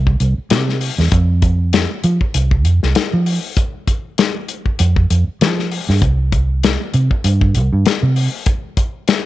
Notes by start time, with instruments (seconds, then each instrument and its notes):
Already playing: fingered electric bass C2
0.07 kick
0.20 fingered electric bass C2, closed hi-hat
0.38 muted fingered electric bass stroke
0.50 fingered electric bass C3, snare, closed hi-hat
0.69 snare
0.81 open hi-hat
0.98 fingered electric bass E2, snare
1.12 fingered electric bass F2, kick, closed hi-hat
1.42 kick, closed hi-hat
1.73 snare, closed hi-hat
2.04 fingered electric bass F3, closed hi-hat
2.21 kick
2.34 fingered electric bass C2, closed hi-hat
2.51 kick
2.65 fingered electric bass F2, closed hi-hat
2.83 fingered electric bass C2, snare
2.95 snare, closed hi-hat
3.13 fingered electric bass F3
3.26 open hi-hat
3.57 kick, closed hi-hat
3.88 kick, closed hi-hat
4.18 snare, closed hi-hat
4.48 closed hi-hat
4.66 kick
4.79 fingered electric bass F2, closed hi-hat
4.96 kick
5.10 fingered electric bass F2, closed hi-hat
5.28 muted fingered electric bass stroke
5.41 fingered electric bass F3, snare, closed hi-hat
5.59 snare
5.72 open hi-hat
5.89 fingered electric bass G2, snare
6.02 fingered electric bass C2, kick, closed hi-hat
6.32 kick, closed hi-hat
6.63 snare, closed hi-hat
6.94 fingered electric bass C3, closed hi-hat
7.11 kick
7.24 fingered electric bass G2, closed hi-hat
7.41 kick
7.55 fingered electric bass C2, closed hi-hat
7.73 fingered electric bass G2
7.86 snare, closed hi-hat
8.03 fingered electric bass C3
8.16 open hi-hat
8.46 kick, closed hi-hat
8.77 kick, closed hi-hat
9.08 snare, closed hi-hat